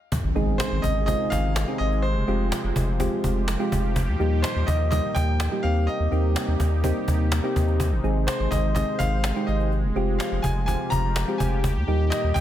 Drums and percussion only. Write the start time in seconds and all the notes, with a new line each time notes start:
0.12 cajon bass
0.36 cajon slap
0.60 cajon slap
0.84 cajon bass
1.08 cajon bass
1.32 cajon bass
1.56 cajon slap
1.68 cajon slap
1.80 cajon slap
1.92 cajon slap
2.04 cajon slap
2.28 cajon slap
2.52 cajon slap
2.76 cajon bass
3.00 cajon bass
3.24 cajon bass
3.48 cajon slap
3.60 cajon slap
3.72 cajon bass
3.84 cajon slap
3.96 cajon bass
4.20 cajon slap
4.44 cajon slap
4.68 cajon bass
4.92 cajon bass
5.16 cajon bass
5.40 cajon slap
5.52 cajon slap
5.64 cajon slap
5.76 cajon slap
5.88 cajon slap
6.12 cajon slap
6.36 cajon slap
6.60 cajon bass
6.84 cajon bass
7.08 cajon bass
7.32 cajon slap
7.44 cajon slap
7.56 cajon bass
7.68 cajon slap
7.80 cajon bass
8.04 cajon slap
8.28 cajon slap
8.52 cajon bass
8.76 cajon bass
9.00 cajon bass
9.24 cajon slap
9.36 cajon slap
9.48 cajon slap
9.60 cajon slap
9.72 cajon slap
9.96 cajon slap
10.20 cajon slap
10.44 cajon bass
10.68 cajon bass
10.92 cajon bass
11.16 cajon slap
11.28 cajon slap
11.40 cajon bass
11.52 cajon slap
11.64 cajon bass
11.88 cajon slap
12.12 cajon slap
12.36 cajon bass